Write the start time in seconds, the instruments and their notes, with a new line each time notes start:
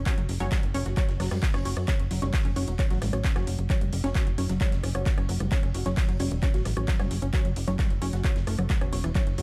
0.06 synth stab F#3 C#4 C#5, synth arpeggio sound F#4, kick, clap, closed hi-hat, ride
0.18 analog synth bass F#1, synth arpeggio sound F#3, closed hi-hat
0.29 analog synth bass F#1, open hi-hat, ride
0.40 analog synth bass F#1, synth arpeggio sound F#3, synth stab F#3 C#4 C#5, snare, closed hi-hat
0.51 synth arpeggio sound G3, kick, snare, clap, closed hi-hat, ride
0.63 analog synth bass F#1, closed hi-hat, ride
0.74 analog synth bass F#1, synth stab F#3 C#4 C#5, synth arpeggio sound C#4, open hi-hat, ride
0.86 analog synth bass F#1, synth arpeggio sound F#4, snare, closed hi-hat
0.96 synth arpeggio sound F#3, synth stab F#3 C#4 C#5, kick, clap, closed hi-hat, ride
1.09 analog synth bass F#1, snare, closed hi-hat
1.20 analog synth bass F#1, synth arpeggio sound F#3, cross-stick, snare, open hi-hat
1.31 analog synth bass F#2, synth arpeggio sound G3, cross-stick, snare, closed hi-hat, open hi-hat
1.43 kick, snare, clap, closed hi-hat
1.54 analog synth bass F#1, synth stab F#3 C#4 C#5, synth arpeggio sound C#4, cross-stick, snare, closed hi-hat, open hi-hat
1.65 analog synth bass F#1, synth stab F#3 C#4 C#5, synth arpeggio sound F#4, open hi-hat
1.77 analog synth bass F#2, synth arpeggio sound F#3, cross-stick, ride
1.88 synth stab F#3 C#4 C#5, synth arpeggio sound F#3, kick, clap, closed hi-hat, ride
1.99 analog synth bass F#1, closed hi-hat
2.11 analog synth bass F#1, synth arpeggio sound F#3, open hi-hat, ride
2.22 analog synth bass F#1, synth stab F#3 C#4 C#5, synth arpeggio sound G3, snare, closed hi-hat
2.34 kick, snare, clap, closed hi-hat, open hi-hat
2.45 analog synth bass F#1, synth arpeggio sound C#4, closed hi-hat
2.56 analog synth bass F#1, synth stab F#3 C#4 C#5, synth arpeggio sound F#4, open hi-hat, ride
2.68 analog synth bass E1, synth arpeggio sound F#3, closed hi-hat, ride
2.79 synth stab F#3 C#4 C#5, kick, clap, closed hi-hat, ride
2.90 analog synth bass A1, synth arpeggio sound F#3, snare, closed hi-hat
3.01 analog synth bass A1, synth arpeggio sound G3, cross-stick, snare, open hi-hat, ride
3.13 analog synth bass A1, synth stab F#3 C#4 C#5, cross-stick, closed hi-hat
3.24 synth arpeggio sound C#4, kick, snare, clap, closed hi-hat, ride
3.36 analog synth bass F#1, synth stab F#3 C#4 C#5, synth arpeggio sound F#4, cross-stick, snare, closed hi-hat
3.47 analog synth bass F#1, synth arpeggio sound F#3, open hi-hat, ride
3.58 analog synth bass F#1, closed hi-hat
3.70 synth stab F#3 C#4 C#5, synth arpeggio sound F#3, kick, clap, closed hi-hat, ride
3.81 analog synth bass F#1, synth arpeggio sound G3, closed hi-hat
3.93 analog synth bass F#1, open hi-hat, ride
4.04 analog synth bass F#1, synth stab F#3 C#4 C#5, synth arpeggio sound C#4, snare, closed hi-hat
4.15 synth arpeggio sound F#4, kick, snare, clap, closed hi-hat, ride
4.27 analog synth bass F#1, synth arpeggio sound F#3, closed hi-hat, ride
4.38 analog synth bass F#1, synth stab F#3 C#4 C#5, open hi-hat, ride
4.49 analog synth bass F#1, synth arpeggio sound F#3, snare, closed hi-hat
4.61 synth stab F#3 C#4 C#5, synth arpeggio sound G3, kick, clap, closed hi-hat, ride
4.72 analog synth bass F#1, snare, closed hi-hat
4.83 analog synth bass F#1, synth arpeggio sound C#4, cross-stick, open hi-hat, ride
4.95 analog synth bass F#1, synth stab F#3 C#4 C#5, synth arpeggio sound F#4, cross-stick, closed hi-hat
5.05 synth arpeggio sound F#3, kick, snare, clap, closed hi-hat, ride
5.18 analog synth bass F#1, synth stab F#3 C#4 C#5, cross-stick, closed hi-hat
5.29 analog synth bass F#1, synth arpeggio sound F#3, open hi-hat, ride
5.40 analog synth bass F#1, synth arpeggio sound G3, cross-stick, closed hi-hat, ride
5.52 synth stab F#3 C#4 C#5, kick, clap, closed hi-hat, ride
5.63 analog synth bass F#1, synth arpeggio sound C#4, closed hi-hat
5.74 analog synth bass F#1, synth arpeggio sound F#4, open hi-hat, ride
5.85 analog synth bass F#1, synth stab F#3 C#4 C#5, synth arpeggio sound F#3, snare, closed hi-hat
5.97 kick, snare, clap, closed hi-hat, open hi-hat
6.09 analog synth bass F#1, synth arpeggio sound F#3, closed hi-hat
6.19 analog synth bass F#1, synth stab F#3 C#4 C#5, synth arpeggio sound G3, open hi-hat, ride
6.31 analog synth bass E1, closed hi-hat, ride
6.42 synth stab F#3 C#4 C#5, synth arpeggio sound C#4, kick, clap, closed hi-hat, ride
6.54 analog synth bass A1, synth arpeggio sound F#4, snare, closed hi-hat
6.65 analog synth bass A1, synth arpeggio sound F#3, cross-stick, snare, open hi-hat, ride
6.77 analog synth bass A1, synth stab F#3 C#4 C#5, cross-stick, closed hi-hat
6.88 synth arpeggio sound F#3, kick, snare, clap, closed hi-hat, ride
6.99 analog synth bass F#1, synth stab F#3 C#4 C#5, synth arpeggio sound G3, cross-stick, snare, closed hi-hat
7.11 analog synth bass F#1, open hi-hat, ride
7.22 analog synth bass F#1, synth arpeggio sound C#4, closed hi-hat
7.33 synth stab F#3 C#4 C#5, synth arpeggio sound F#4, kick, clap, closed hi-hat, ride
7.45 analog synth bass F#1, synth arpeggio sound F#3, closed hi-hat
7.56 analog synth bass F#1, open hi-hat, ride
7.68 analog synth bass F#1, synth stab F#3 C#4 C#5, synth arpeggio sound F#3, snare, closed hi-hat
7.79 synth arpeggio sound G3, kick, snare, clap, closed hi-hat, ride
7.90 analog synth bass F#1, closed hi-hat, ride
8.01 analog synth bass F#1, synth stab F#3 C#4 C#5, synth arpeggio sound C#4, open hi-hat, ride
8.13 analog synth bass F#1, synth arpeggio sound F#4, snare, closed hi-hat
8.24 synth stab F#3 C#4 C#5, synth arpeggio sound F#3, kick, clap, closed hi-hat, ride
8.36 analog synth bass F#1, snare, closed hi-hat
8.47 analog synth bass F#1, synth arpeggio sound A3, cross-stick, open hi-hat, ride
8.59 analog synth bass F#1, synth arpeggio sound F#3, cross-stick, closed hi-hat
8.69 synth arpeggio sound F#3, kick, snare, clap, closed hi-hat, ride
8.81 analog synth bass E1, synth stab F#3 C#4 C#5, cross-stick, closed hi-hat
8.93 analog synth bass E1, synth arpeggio sound F#3, synth stab F#3 C#4 C#5, open hi-hat, ride
9.04 analog synth bass E1, synth arpeggio sound E3, cross-stick, closed hi-hat, ride
9.15 synth stab F#3 C#4 C#5, synth arpeggio sound F#3, kick, clap, closed hi-hat, ride
9.27 analog synth bass F#1, closed hi-hat
9.38 analog synth bass F#1, synth arpeggio sound F#3, open hi-hat, ride